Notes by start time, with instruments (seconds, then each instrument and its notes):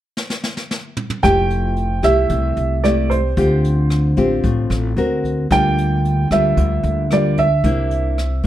0.17 snare
0.30 snare
0.43 snare
0.57 snare
0.71 snare
0.97 mid tom
1.10 mid tom
1.23 upright bass F1, nylon-string guitar F3 A3 E4 G4, grand piano G5, kick, cross-stick, closed hi-hat
1.50 closed hi-hat
1.77 closed hi-hat
2.02 upright bass C2, nylon-string guitar A3 E4 G4, grand piano E5, kick, cross-stick, closed hi-hat
2.29 upright bass C2, nylon-string guitar C3, kick, closed hi-hat
2.57 upright bass C2, closed hi-hat
2.84 nylon-string guitar A3 E4 G4, grand piano D5, cross-stick, closed hi-hat
3.10 grand piano C5, kick, closed hi-hat
3.37 upright bass D2, nylon-string guitar D3 C4 F4 G4, kick, closed hi-hat
3.64 closed hi-hat
3.90 cross-stick, closed hi-hat
4.17 upright bass A1, nylon-string guitar C4 F4 G4, kick, closed hi-hat
4.43 upright bass A1, nylon-string guitar A2, kick, closed hi-hat
4.70 upright bass A1, cross-stick, closed hi-hat
4.97 upright bass D2, nylon-string guitar C4 F#4 A#4, closed hi-hat
5.24 kick, closed hi-hat
5.51 upright bass D2, nylon-string guitar D3 G3 A#3 F4, grand piano G5, kick, cross-stick, closed hi-hat
5.78 closed hi-hat
6.05 closed hi-hat
6.31 upright bass D2, nylon-string guitar G3 A#3 F4, grand piano E5, kick, cross-stick, closed hi-hat
6.57 upright bass D2, nylon-string guitar D3, kick, closed hi-hat
6.83 upright bass D2, closed hi-hat
7.11 nylon-string guitar G3 A#3 F4, grand piano D5, cross-stick, closed hi-hat
7.37 grand piano E5, kick, closed hi-hat
7.64 upright bass C2, nylon-string guitar C3 A#3 D4 E4, kick, closed hi-hat
7.91 closed hi-hat
8.18 cross-stick, closed hi-hat
8.44 nylon-string guitar A#3